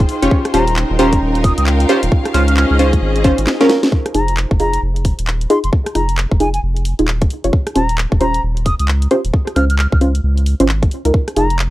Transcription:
Already playing: analog synth pad D#4 G#4 G5 C6, string section F4 C5
0.09 open hi-hat
0.22 sub bass F1, synth stab C#4 F4 G4 C#5, closed hi-hat
0.31 analog synth pad C#4 F4, string section D#4, kick
0.45 cross-stick, closed hi-hat
0.54 sub bass D#1, synth stab C#4 F4 G4 C5, flute A#5, open hi-hat
0.63 string section A#4
0.68 closed hi-hat
0.76 clap
0.90 sub bass D#1
0.99 synth stab C#4 F4 G4 C5, flute A#5, open hi-hat
1.09 string section F5, kick, closed hi-hat
1.15 string section G5
1.22 sub bass D#1
1.35 closed hi-hat
1.44 flute D#6, kick, open hi-hat
1.58 sub bass C#2, flute D#6, closed hi-hat
1.67 clap
1.80 closed hi-hat
1.89 synth stab C#4 F4 G4 C5, open hi-hat
2.03 sub bass D#1, closed hi-hat
2.12 string section C#4, analog synth pad D#4 G#4 C5, kick
2.25 cross-stick, closed hi-hat
2.34 sub bass C#2, synth stab C#4 F4 C5, flute F6, cross-stick, open hi-hat
2.42 string section D#5
2.48 string section G#4, flute F6, closed hi-hat
2.57 flute F6, clap
2.70 sub bass C#2, flute F6
2.79 synth stab C#4 F4 C5, open hi-hat
2.93 kick, closed hi-hat
3.02 sub bass G#1
3.16 closed hi-hat
3.24 synth stab C#4 F4 C5, kick, open hi-hat
3.38 sub bass G#1, closed hi-hat
3.47 snare, clap
3.61 synth stab C#4 F4 A#4, snare, closed hi-hat
3.69 snare, open hi-hat
3.83 snare, closed hi-hat
3.92 kick
4.06 cross-stick, closed hi-hat
4.14 sub bass F1, synth stab D#4 F4 G#4, flute A#5, open hi-hat
4.28 closed hi-hat
4.37 clap
4.51 sub bass F1, kick
4.60 synth stab D#4 F4 G#4, flute A#5, open hi-hat
4.73 closed hi-hat
4.82 sub bass F1
4.96 closed hi-hat
5.05 kick, open hi-hat
5.19 sub bass D#1, closed hi-hat
5.27 clap
5.41 closed hi-hat
5.50 synth stab D#4 F4 G#4, flute C6, open hi-hat
5.64 sub bass F1, flute C6, closed hi-hat
5.73 kick
5.86 cross-stick, closed hi-hat
5.95 sub bass F1, synth stab D#4 F4 G#4, flute A#5, cross-stick, open hi-hat
6.09 closed hi-hat
6.18 clap
6.32 sub bass F1, kick
6.40 synth stab D#4 F4 G#4, flute G#5, open hi-hat
6.54 flute G#5, closed hi-hat
6.63 sub bass F1
6.76 closed hi-hat
6.85 open hi-hat
6.99 sub bass D#1, synth stab D#4 F4 G#4, closed hi-hat
7.08 clap
7.22 kick, closed hi-hat
7.30 open hi-hat
7.44 sub bass F1, synth stab C#4 F4 G4 C#5, closed hi-hat
7.53 kick
7.67 cross-stick, closed hi-hat
7.75 sub bass D#1, synth stab C#4 F4 G4 C5, flute A#5, open hi-hat
7.89 closed hi-hat
7.98 clap
8.12 sub bass D#1, kick
8.21 synth stab C#4 F4 G4 C5, flute A#5, open hi-hat
8.34 closed hi-hat
8.43 sub bass D#1
8.57 closed hi-hat
8.66 flute D#6, kick, open hi-hat
8.79 sub bass C#2, flute D#6, closed hi-hat
8.88 clap
9.02 closed hi-hat
9.11 synth stab C#4 F4 G4 C5, open hi-hat
9.25 sub bass D#1, closed hi-hat
9.34 kick
9.47 cross-stick, closed hi-hat
9.56 sub bass C#2, synth stab C#4 F4 C5, flute F6, cross-stick, open hi-hat
9.70 flute F6, closed hi-hat
9.79 flute F6, clap
9.92 sub bass C#2, flute F6, kick
10.01 synth stab C#4 F4 C5, open hi-hat
10.15 closed hi-hat
10.24 sub bass C#2
10.37 closed hi-hat
10.46 open hi-hat
10.60 sub bass G#1, synth stab C#4 F4 C5, closed hi-hat
10.69 clap
10.83 kick, closed hi-hat
10.91 open hi-hat
11.05 sub bass C#2, synth stab D#4 F4 A#4, closed hi-hat
11.14 kick
11.28 cross-stick, closed hi-hat
11.36 sub bass F1, synth stab D#4 F4 G#4, flute A#5, open hi-hat
11.50 closed hi-hat
11.59 clap

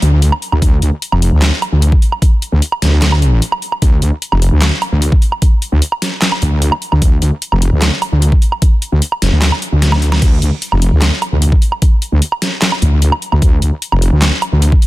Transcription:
0.02 wobble bass D2, closed hi-hat
0.22 closed hi-hat
0.32 low woodblock
0.42 closed hi-hat
0.52 wobble bass D2, low woodblock
0.62 wobble bass D2, kick, closed hi-hat
0.82 wobble bass D2, closed hi-hat
1.02 closed hi-hat
1.12 wobble bass F1, low woodblock
1.22 open hi-hat
1.32 wobble bass D2
1.42 snare, clap, closed hi-hat
1.62 closed hi-hat, low woodblock
1.72 wobble bass D2
1.82 closed hi-hat
1.92 kick
2.02 closed hi-hat
2.12 low woodblock
2.22 kick, closed hi-hat
2.42 closed hi-hat
2.52 wobble bass D2
2.62 closed hi-hat
2.72 low woodblock
2.82 wobble bass D2, snare, open hi-hat
3.02 snare, clap, closed hi-hat
3.12 low woodblock
3.22 closed hi-hat
3.42 closed hi-hat
3.52 low woodblock
3.62 closed hi-hat
3.72 low woodblock
3.82 wobble bass D2, kick, closed hi-hat
4.02 wobble bass D2, closed hi-hat
4.22 closed hi-hat
4.32 wobble bass F1, low woodblock
4.42 open hi-hat
4.52 wobble bass D2
4.62 snare, clap, closed hi-hat
4.82 closed hi-hat, low woodblock
4.92 wobble bass D2
5.02 closed hi-hat
5.12 kick
5.22 closed hi-hat
5.32 low woodblock
5.42 kick, closed hi-hat
5.62 closed hi-hat
5.72 wobble bass D2
5.82 closed hi-hat
5.92 low woodblock
6.02 snare, open hi-hat
6.22 snare, clap, closed hi-hat
6.32 low woodblock
6.42 wobble bass D2, closed hi-hat
6.62 closed hi-hat
6.72 low woodblock
6.82 closed hi-hat
6.92 wobble bass D2, low woodblock
7.02 wobble bass D2, kick, closed hi-hat
7.22 wobble bass D2, closed hi-hat
7.42 closed hi-hat
7.52 wobble bass F1, low woodblock
7.62 open hi-hat
7.72 wobble bass D2
7.82 snare, clap, closed hi-hat
8.02 closed hi-hat, low woodblock
8.12 wobble bass D2
8.22 closed hi-hat
8.32 kick
8.42 closed hi-hat
8.52 low woodblock
8.62 kick, closed hi-hat
8.82 closed hi-hat
8.92 wobble bass D2
9.02 closed hi-hat
9.12 low woodblock
9.22 wobble bass F1, snare, open hi-hat
9.32 wobble bass D2
9.42 snare, clap, closed hi-hat
9.52 low woodblock
9.62 closed hi-hat
9.72 wobble bass D2
9.82 snare, closed hi-hat
9.92 snare, low woodblock
10.02 closed hi-hat
10.12 snare, low woodblock
10.22 wobble bass D2, kick, closed hi-hat, crash
10.42 wobble bass D2, closed hi-hat
10.62 closed hi-hat
10.72 wobble bass F1, low woodblock
10.82 open hi-hat
10.92 wobble bass D2
11.02 snare, clap, closed hi-hat
11.22 closed hi-hat, low woodblock
11.32 wobble bass D2
11.42 closed hi-hat
11.52 kick
11.62 closed hi-hat
11.72 low woodblock
11.82 kick, closed hi-hat
12.02 closed hi-hat
12.12 wobble bass D2
12.22 closed hi-hat
12.32 low woodblock
12.42 snare, open hi-hat
12.62 snare, clap, closed hi-hat
12.72 low woodblock
12.82 wobble bass D2, closed hi-hat
13.02 closed hi-hat
13.12 low woodblock
13.22 closed hi-hat
13.32 wobble bass D2, low woodblock
13.42 wobble bass D2, kick, closed hi-hat
13.62 wobble bass D2, closed hi-hat
13.82 closed hi-hat
13.92 wobble bass F1, low woodblock
14.02 open hi-hat
14.12 wobble bass D2
14.22 snare, clap, closed hi-hat
14.42 closed hi-hat, low woodblock
14.52 wobble bass D2
14.62 closed hi-hat
14.72 kick
14.82 closed hi-hat

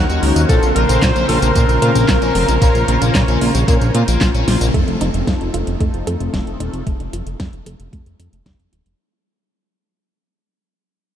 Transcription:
Already playing: analog synth pad D#3 A#3 C#4 F#4, analog polysynth C#4 D#4 F#4 A#4 C5, alto saxophone F#5, digital synth lead F#6
0.09 analog synth bass D#2, overdriven electric guitar F#4, closed hi-hat, tambourine
0.23 analog synth bass C#2, overdriven electric guitar A#4, open hi-hat
0.36 analog synth bass D#2, overdriven electric guitar D#4, closed hi-hat, tambourine
0.49 analog synth bass A#1, analog synth pad C#3 C5, overdriven electric guitar A#3, analog polysynth C4 C#4 F4 A#4 C5, alto saxophone A4, digital synth lead A5, kick, closed hi-hat, tambourine
0.63 analog synth bass A#1, closed hi-hat, tambourine
0.75 analog synth bass A#1, overdriven electric guitar F4, alto saxophone A#4, digital synth lead A#5, closed hi-hat
0.89 analog synth bass A#1, overdriven electric guitar A#3, closed hi-hat, tambourine
1.02 analog synth bass A#2, overdriven electric guitar F4, alto saxophone C5, digital synth lead C6, kick, snare, clap, closed hi-hat, tambourine
1.16 analog synth bass A#1, overdriven electric guitar C#4, closed hi-hat, tambourine
1.29 analog synth bass A#1, overdriven electric guitar F4, alto saxophone A#4, digital synth lead A#5, open hi-hat
1.42 analog synth bass A#1, overdriven electric guitar A#3, closed hi-hat, tambourine
1.55 analog synth bass A#2, overdriven electric guitar A#3, kick, closed hi-hat, tambourine
1.69 analog synth bass A#1, closed hi-hat, tambourine
1.82 analog synth bass A#2, overdriven electric guitar F4, closed hi-hat
1.95 analog synth bass A#1, overdriven electric guitar A#3, closed hi-hat, tambourine
2.09 analog synth bass A#1, overdriven electric guitar F4, kick, snare, clap, closed hi-hat, tambourine
2.22 analog synth bass A#1, overdriven electric guitar C#4, closed hi-hat, tambourine
2.35 analog synth bass F1, analog polysynth C4 C#4 F4 A#4 C5, overdriven electric guitar F4, open hi-hat
2.48 analog synth bass A#1, overdriven electric guitar A#3, closed hi-hat, tambourine
2.62 analog synth bass A#1, overdriven electric guitar A#3, analog polysynth C#4 F4 A#4 C5 C#5, kick, closed hi-hat, tambourine
2.75 analog synth bass A#1, closed hi-hat, tambourine
2.88 analog synth bass A#1, overdriven electric guitar F4, closed hi-hat
3.02 analog synth bass A#1, overdriven electric guitar A#3, closed hi-hat, tambourine
3.15 analog synth bass A#2, overdriven electric guitar F4, kick, snare, clap, closed hi-hat, tambourine
3.28 analog synth bass A#1, overdriven electric guitar C#4, closed hi-hat, tambourine
3.41 analog synth bass A#1, overdriven electric guitar F4, open hi-hat
3.55 analog synth bass A#1, overdriven electric guitar A#3, closed hi-hat, tambourine
3.68 analog synth bass A#2, overdriven electric guitar A#3, kick, closed hi-hat, tambourine
3.81 analog synth bass A#1, closed hi-hat, tambourine
3.95 analog synth bass A#2, analog polysynth C4 C#4 F4 A#4 C5, overdriven electric guitar F4, closed hi-hat
4.08 analog synth bass A#1, overdriven electric guitar A#3, closed hi-hat, tambourine
4.21 analog synth bass A#1, overdriven electric guitar F4, kick, snare, clap, closed hi-hat, tambourine
4.34 analog synth bass A#1, overdriven electric guitar C#4, closed hi-hat, tambourine
4.48 analog synth bass A#1, overdriven electric guitar F4, snare, open hi-hat
4.61 analog synth bass A#1, overdriven electric guitar A#3, closed hi-hat, tambourine
4.74 analog synth bass F1, synth arpeggio sound A3, analog polysynth A3 C4 D#4 F4 A4, kick, closed hi-hat
4.88 analog synth bass F1, closed hi-hat
5.01 analog synth bass F1, synth arpeggio sound D#4, closed hi-hat
5.14 analog synth bass F1, closed hi-hat
5.27 analog synth bass F2, synth arpeggio sound A3, kick, snare, closed hi-hat
5.41 analog synth bass F1, closed hi-hat
5.54 analog synth bass F1, synth arpeggio sound F4, closed hi-hat
5.67 analog synth bass F1, closed hi-hat
5.80 analog synth bass F2, synth arpeggio sound A3, kick, closed hi-hat
5.94 analog synth bass F1, closed hi-hat
6.07 analog synth bass F2, synth arpeggio sound A4, closed hi-hat
6.20 analog synth bass F1, closed hi-hat
6.34 analog synth bass F1, synth arpeggio sound A3, kick, snare, closed hi-hat
6.47 analog synth bass F1, closed hi-hat
6.60 analog synth bass D#1, analog polysynth A3 C4 D#4 F4 A4, synth arpeggio sound D#4, closed hi-hat
6.73 analog synth bass F1, closed hi-hat
6.87 analog synth bass F1, synth arpeggio sound A3, kick, closed hi-hat
7.00 analog synth bass F1, closed hi-hat
7.13 analog synth bass F1, synth arpeggio sound F4, closed hi-hat
7.26 analog synth bass F1, closed hi-hat
7.40 analog synth bass F2, synth arpeggio sound A3, kick, snare, closed hi-hat
7.53 analog synth bass F1, closed hi-hat
7.66 analog synth bass F1, synth arpeggio sound A4, closed hi-hat
7.80 analog synth bass F1, closed hi-hat
7.93 analog synth bass F2, synth arpeggio sound A3, kick, closed hi-hat
8.06 analog synth bass F1, closed hi-hat
8.19 analog synth bass F2, synth arpeggio sound D#4, closed hi-hat
8.33 analog synth bass F1, closed hi-hat
8.46 analog synth bass F1, synth arpeggio sound A3, kick, snare, closed hi-hat
8.59 analog synth bass F1, closed hi-hat
8.73 analog synth bass D#1, synth arpeggio sound F4, closed hi-hat
8.86 analog synth bass F1, closed hi-hat

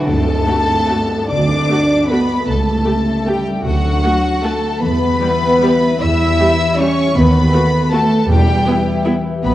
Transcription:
Already playing: harp D4 F#4 A4 D5
0.07 double bass section D2, harp D3, cello section A3, violin section A4 A5, tam-tam
0.17 harp F#3
0.27 harp D4
0.37 harp A4
0.46 viola section A3 F#4, harp F#4
0.58 harp D5
0.79 harp F#5
0.88 viola section A3 F#4
1.00 harp D5
1.11 harp F#4
1.21 harp A4
1.30 double bass section D2, harp D3, cello section D4, violin section D5 D6
1.41 harp F#3
1.50 harp D4
1.60 harp A4
1.69 viola section A3 F#4, harp F#4
1.91 harp A5
2.01 harp F#5
2.10 viola section A3 F#4, cello section B3, violin section B4 B5, harp A5
2.21 harp D5
2.31 harp F#4
2.39 harp A4
2.48 double bass section C#2, harp C#3, cello section A3, violin section A4 A5
2.58 harp C#4
2.67 harp G3
2.77 harp E4
2.85 viola section A3 G4, harp A4
2.97 harp G4
3.07 harp E5
3.17 harp A5
3.26 cello section G3, viola section A3 G4, violin section G4 G5, harp E5
3.37 harp G4
3.47 harp A4
3.57 harp E4
3.64 double bass section D2, harp D3, cello section F#3, violin section F#4 F#5
3.76 harp D4
3.85 harp F#3
3.94 harp F#4
4.03 viola section A3 F#4, harp A4
4.14 harp F#4
4.24 harp F#5
4.34 harp A5
4.42 viola section A3 F#4, cello section A3, violin section A4 A5, harp F#5
4.53 harp F#4
4.62 harp A4
4.72 harp F#4
4.81 double bass section E2, harp E3, cello section B3, violin section B4 B5
4.90 harp G3
5.01 harp E4
5.10 harp G4
5.20 viola section G3 G4, harp E4
5.30 harp E5
5.41 harp G5
5.50 harp E5
5.60 viola section G3 G4, harp G5
5.71 harp E5
5.81 harp G4
5.91 harp E4
6.01 double bass section E2, harp E3, cello section E4, violin section E5 E6
6.11 harp G3
6.20 harp E4
6.29 harp G4
6.39 viola section G3 G4
6.49 harp E5
6.59 harp G5
6.69 harp E5
6.79 viola section G3 G4, cello section C#4, violin section C#5 C#6, harp G5
6.88 harp E5
6.97 harp G4
7.07 harp E4
7.15 double bass section D#2, harp D#3, cello section B3, violin section B4 B5
7.25 harp A3
7.34 harp B3
7.43 harp F#4
7.53 viola section A3 F#4, harp A4
7.63 harp B4
7.72 harp F#5
7.82 harp A5
7.92 viola section A3 F#4, cello section A3, violin section A4 A5, harp F#5
8.02 harp B4
8.11 harp A4
8.21 harp F#4
8.29 double bass section E2, timpani E2, harp E3, cello section G3, violin section G4 G5
8.39 harp B3
8.47 harp E4
8.57 harp G4
8.66 viola section B3 E4, harp B4
8.77 harp E5
8.86 harp G5
8.97 harp B5
9.06 viola section B3 E4, harp G5
9.15 harp E5
9.25 harp B4
9.34 harp G4
9.43 double bass section B1, harp B2, cello section B3, violin section B4 B5

